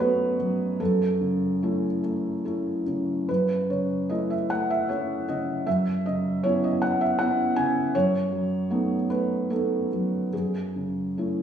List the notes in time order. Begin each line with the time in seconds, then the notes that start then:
Already playing: F#2 F#3 C#5 D#5
0.00 A3 B3 F#4 B4
0.39 F#3
0.80 F#2 A4
1.21 C#3
1.63 A3 C#4 E4
2.03 A3
2.45 A3 C#4 E4
2.87 C#3
3.29 F#2 B4
3.70 C#3 C#5
4.09 A3 C#4 E4 D#5
4.30 E5
4.50 A3 F#5
4.70 E5
4.89 A3 C#4 E4 C#5
5.29 C#3 D#5
5.67 F#2 E5
6.06 C#3 D#5
6.43 B3 C#4 E4 C#5
6.64 D#5
6.82 B3 F#5
7.01 E5
7.19 B3 C#4 E4 F#5
7.56 C#3 G#5
7.95 F#2 C#5
8.32 F#3
8.70 A3 B3 D#4
9.10 A3 B4
9.50 A3 B3 D#4 A4
9.93 F#3
10.33 F#2 G#4
10.76 C#3
11.18 A3 C#4 E4